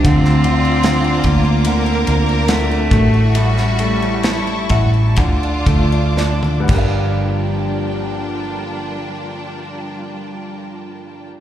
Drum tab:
CC |----------------|--------------x-|----------------|
RD |x-x-x-x-x-x-x-x-|x-x-x-x-x-x-----|----------------|
SD |-o--o-------o---|-o--o-------o---|----------------|
T1 |----------------|-------------o--|----------------|
BD |o-----o-------o-|------o-o-o---o-|----------------|